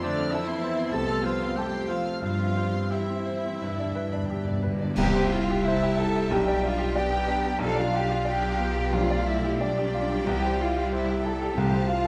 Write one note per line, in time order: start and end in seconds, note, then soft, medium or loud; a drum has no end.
0.00 0.22 F2 medium
0.00 0.89 F2 medium
0.00 0.30 D3 medium
0.00 0.31 A3 medium
0.00 0.12 C4 medium
0.00 0.30 D4 medium
0.00 0.30 D5 medium
0.00 0.33 D5 medium
0.00 0.17 E6 medium
0.04 0.27 C5 medium
0.16 0.42 C4 medium
0.16 0.31 F6 medium
0.31 0.92 E3 medium
0.31 0.61 C4 medium
0.31 0.92 E4 medium
0.31 0.57 A4 medium
0.31 0.94 E5 medium
0.31 0.92 E5 medium
0.31 0.93 E5 medium
0.31 0.46 E6 medium
0.47 0.71 C4 medium
0.47 0.62 C6 medium
0.61 1.53 B3 medium
0.61 0.87 C5 medium
0.61 0.77 A5 medium
0.77 1.02 C4 medium
0.77 0.92 C6 medium
0.90 1.44 C2 medium
0.90 1.18 C3 medium
0.90 1.23 A3 medium
0.90 1.23 A4 medium
0.90 1.23 A5 medium
0.90 1.26 A5 medium
0.90 1.24 A5 medium
0.90 1.06 E6 medium
1.09 1.34 C4 medium
1.09 1.24 F6 medium
1.22 1.55 F3 medium
1.22 1.56 F4 medium
1.22 1.50 C5 medium
1.22 1.55 F5 medium
1.22 1.58 F5 medium
1.22 1.55 F5 medium
1.22 1.40 E6 medium
1.41 1.66 C4 medium
1.41 1.56 C6 soft
1.56 1.88 G3 medium
1.56 2.21 A3 medium
1.56 1.89 G4 medium
1.56 1.83 A4 medium
1.56 1.88 G5 medium
1.56 1.87 G5 medium
1.56 1.89 G5 medium
1.56 1.72 A5 medium
1.71 1.99 C4 soft
1.71 1.88 C6 soft
1.88 2.20 F3 medium
1.88 2.21 F4 medium
1.88 2.15 C5 medium
1.88 2.19 F5 medium
1.88 2.20 F5 medium
1.88 2.21 F5 medium
1.88 2.05 E6 soft
2.04 2.22 C4 soft
2.04 2.21 F6 soft
2.20 2.79 G2 medium
2.20 3.22 G2 medium
2.20 3.58 G2 medium
2.20 2.89 F3 medium
2.20 4.62 G3 medium
2.20 2.90 F4 medium
2.20 2.38 C5 medium
2.20 2.89 F5 medium
2.20 2.90 F5 medium
2.39 2.67 C4 soft
2.39 2.56 E5 soft
2.56 2.84 C5 soft
2.56 2.73 G5 soft
2.71 3.02 C4 soft
2.71 2.90 C6 soft
2.90 4.62 E3 medium
2.90 4.62 E4 medium
2.90 3.19 G4 soft
2.90 4.62 E5 medium
2.90 4.59 E5 medium
2.90 3.08 G5 soft
3.06 3.37 C4 soft
3.06 3.25 E5 soft
3.24 3.43 C5 soft
3.24 3.54 C5 soft
3.39 3.59 E5 soft
3.46 3.62 C4 soft
3.59 4.17 G2 medium
3.59 3.68 G2 soft
3.59 4.93 G2 medium
3.59 3.75 B4 soft
3.69 3.74 G2 soft
3.75 3.82 G2 soft
3.75 3.94 D5 soft
3.80 4.06 D4 soft
3.84 3.90 G2 soft
3.91 3.98 G2 soft
3.91 4.22 B4 medium
3.91 4.10 G5 soft
3.99 4.06 G2 soft
4.07 4.14 G2 soft
4.07 4.28 B5 soft
4.13 4.22 G2 medium
4.13 4.39 D4 medium
4.23 4.28 G2 medium
4.23 4.43 G5 soft
4.30 4.36 G2 medium
4.30 4.56 G4 soft
4.37 4.43 G2 medium
4.44 4.50 G2 medium
4.44 4.73 D4 soft
4.44 4.61 D5 soft
4.51 4.58 G2 medium
4.59 4.65 G2 medium
4.59 4.79 B4 soft
4.59 4.89 B4 soft
4.67 4.73 G2 medium
4.74 4.81 G2 medium
4.79 4.89 G2 medium
4.79 4.97 D4 soft
4.79 4.96 D5 medium
4.96 6.27 C2 medium
4.96 6.28 C2 medium
4.96 5.94 C3 medium
4.96 5.21 E3 medium
4.96 5.21 G3 medium
4.96 5.61 C4 medium
4.96 5.22 C4 medium
4.96 5.28 G4 loud
4.96 5.21 G4 medium
4.96 6.92 E5 medium
4.96 5.61 G5 medium
4.96 5.29 G5 medium
4.96 concert bass drum medium
4.96 crash medium
5.15 5.42 C5 medium
5.30 5.59 E4 medium
5.30 5.65 F4 medium
5.30 5.65 F5 medium
5.50 5.76 G4 medium
5.65 6.97 G3 medium
5.65 5.98 E4 medium
5.65 5.93 C5 medium
5.65 5.98 E5 medium
5.65 6.30 A5 medium
5.82 6.08 G4 medium
5.99 6.25 E4 medium
5.99 6.31 A4 medium
5.99 6.31 A5 medium
6.16 6.31 G4 medium
6.30 7.57 B1 medium
6.30 7.61 B1 medium
6.30 6.55 G3 medium
6.30 6.53 D4 medium
6.30 6.53 G4 medium
6.30 6.63 G4 medium
6.30 6.64 G5 medium
6.30 7.62 G5 medium
6.30 6.65 G5 medium
6.48 6.74 D5 medium
6.63 6.89 D4 medium
6.63 6.97 F4 medium
6.63 6.96 F5 medium
6.63 6.97 F5 medium
6.78 7.05 G4 medium
6.96 7.61 B3 medium
6.96 7.61 G4 medium
6.96 7.22 D5 medium
6.96 7.61 G5 medium
6.96 7.62 G5 medium
7.11 7.38 G4 medium
7.28 7.54 D4 medium
7.45 7.61 G4 medium
7.59 8.88 B1 medium
7.59 10.24 B1 medium
7.59 7.85 F3 medium
7.59 7.84 G3 medium
7.59 7.84 D4 medium
7.59 8.26 D4 medium
7.59 7.83 G4 medium
7.59 7.78 A4 medium
7.59 8.91 F5 medium
7.59 7.77 A5 medium
7.59 7.78 A5 medium
7.63 8.26 F5 medium
7.75 7.95 F4 medium
7.75 8.02 D5 medium
7.75 7.94 F5 medium
7.93 8.20 F4 medium
7.93 8.10 G4 medium
7.93 8.11 G5 medium
8.09 8.27 F4 medium
8.09 8.36 G4 medium
8.09 8.26 F5 medium
8.25 8.60 D4 medium
8.25 8.94 G4 medium
8.25 8.53 D5 medium
8.25 9.57 G5 medium
8.25 8.94 G5 medium
8.25 8.93 G5 medium
8.43 8.70 G4 medium
8.57 8.93 B3 medium
8.57 8.86 F4 medium
8.76 9.03 G4 medium
8.93 10.23 B1 medium
8.93 9.16 F3 medium
8.93 9.17 G3 medium
8.93 9.61 A3 medium
8.93 9.17 D4 medium
8.93 9.27 F4 medium
8.93 9.17 G4 medium
8.93 9.60 D5 medium
8.93 9.27 F5 medium
9.11 9.37 D5 medium
9.26 9.60 E4 medium
9.26 9.54 F4 medium
9.26 9.60 E5 medium
9.26 9.61 E5 medium
9.44 9.71 G4 medium
9.59 11.57 G3 medium
9.59 10.26 D4 medium
9.59 9.87 D5 medium
9.59 10.27 D5 medium
9.59 11.54 D5 medium
9.59 9.99 D5 medium
9.59 10.90 G5 medium
9.78 10.04 G4 medium
9.94 10.21 F4 medium
10.12 10.28 G4 medium
10.23 11.53 C2 medium
10.23 10.49 E3 medium
10.23 10.48 G3 medium
10.23 10.48 C4 medium
10.23 10.47 E4 medium
10.23 10.59 G4 medium
10.23 10.59 G5 medium
10.28 11.55 C2 medium
10.28 10.60 G5 medium
10.45 10.70 C5 medium
10.60 10.86 E4 medium
10.60 10.92 F4 medium
10.60 10.92 F5 medium
10.60 10.93 F5 medium
10.76 11.02 G4 medium
10.92 11.24 E4 medium
10.92 11.18 C5 medium
10.92 11.24 E5 medium
10.92 11.56 G5 medium
11.09 11.35 G4 medium
11.25 11.51 E4 medium
11.25 11.57 A4 medium
11.25 11.57 A5 medium
11.25 11.58 A5 medium
11.42 11.58 G4 medium
11.55 12.07 C2 medium
11.55 12.07 C3 medium
11.55 12.07 F3 medium
11.55 11.80 A3 medium
11.55 11.78 C4 medium
11.55 11.79 F4 medium
11.55 11.90 G4 medium
11.55 12.07 F5 medium
11.55 11.90 G5 medium
11.55 12.07 A5 medium
11.59 11.81 C3 medium
11.73 11.99 C5 medium
11.88 12.07 F4 medium
11.88 12.07 F5 medium